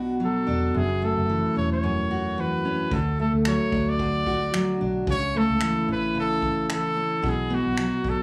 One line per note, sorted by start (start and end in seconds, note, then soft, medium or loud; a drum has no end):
0.00 0.44 B1 medium
0.00 0.75 B2 medium
0.00 0.20 F#3 medium
0.00 0.81 B3 medium
0.00 0.45 D4 medium
0.00 1.32 F#4 medium
0.20 1.29 F#3 medium
0.25 0.79 A4 medium
0.47 0.73 E1 medium
0.47 0.80 D4 medium
0.75 1.14 F#1 medium
0.75 1.82 F#2 medium
0.75 1.06 G#4 medium
1.02 3.19 A3 medium
1.02 1.57 A4 medium
1.17 1.42 F#1 medium
1.29 2.37 E3 medium
1.56 2.88 E1 medium
1.56 2.64 C#4 soft
1.56 1.71 C#5 medium
1.73 2.42 C#5 medium
1.83 2.97 F#2 medium
2.11 4.26 F#4 medium
2.38 2.98 E3 medium
2.38 2.95 B4 medium
2.65 2.98 C#4 medium
2.91 3.30 D2 medium
2.91 3.98 D3 medium
2.91 3.19 A4 medium
2.91 kick loud
3.19 5.34 A3 medium
3.19 3.32 A4 medium
3.34 3.58 D2 medium
3.45 4.52 F#3 medium
3.45 3.91 C#5 medium
3.45 finger snap loud
3.72 4.76 D2 medium
3.72 4.80 D4 soft
3.72 kick medium
3.89 4.81 D5 medium
3.99 5.07 D3 medium
3.99 kick medium
4.26 5.14 F#4 medium
4.26 kick medium
4.53 5.13 F#3 medium
4.53 finger snap medium
4.81 5.06 B1 medium
4.81 5.14 D4 medium
5.07 5.46 C#2 medium
5.07 6.14 C#3 medium
5.07 5.39 C#5 medium
5.07 kick loud
5.35 7.30 A3 medium
5.35 5.90 A4 medium
5.50 5.75 C#2 medium
5.61 6.68 E3 medium
5.61 finger snap medium
5.88 7.20 A1 medium
5.88 6.95 C#4 soft
5.88 6.16 B4 medium
6.15 7.22 C#3 medium
6.20 6.68 A4 medium
6.42 kick medium
6.70 7.30 E3 medium
6.70 finger snap medium
6.74 7.30 A4 medium
6.96 7.29 C#4 medium
7.22 7.62 B1 medium
7.22 8.23 B2 medium
7.22 kick loud
7.29 7.56 G#4 medium
7.50 8.23 B3 medium
7.54 8.11 F#4 medium
7.66 7.91 B1 medium
7.78 8.23 F#3 medium
7.78 finger snap loud
8.04 8.23 B1 medium
8.04 8.23 D4 soft
8.04 kick medium
8.10 8.23 A4 medium